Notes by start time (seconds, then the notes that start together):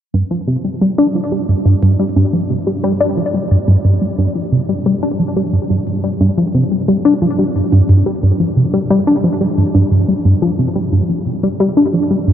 0.14 G2
0.31 F3
0.48 C3
0.65 G3
0.81 G3
0.98 D4
1.15 F3
1.32 G3
1.49 G2
1.66 G2
1.83 G2
1.99 G3
2.16 G2
2.33 F3
2.50 C3
2.67 G3
2.84 G3
3.00 D4
3.17 F3
3.34 G3
3.51 G2
3.68 G2
3.85 G2
4.02 G3
4.18 G2
4.35 F3
4.52 C3
4.69 G3
4.86 G3
5.03 D4
5.20 F3
5.37 G3
5.53 G2
5.70 G2
5.87 G2
6.04 G3
6.21 G2
6.38 F3
6.55 C3
6.71 G3
6.88 G3
7.05 D4
7.22 F3
7.39 G3
7.56 G2
7.72 G2
7.89 G2
8.06 G3
8.23 G2
8.40 F3
8.57 C3
8.74 G3
8.90 G3
9.07 D4
9.24 F3
9.41 G3
9.58 G2
9.75 G2
9.92 G2
10.08 G3
10.25 G2
10.42 F3
10.59 C3
10.76 G3
10.92 G2
11.09 F3
11.26 C3
11.43 G3
11.60 G3
11.77 D4
11.94 F3
12.11 G3
12.27 G2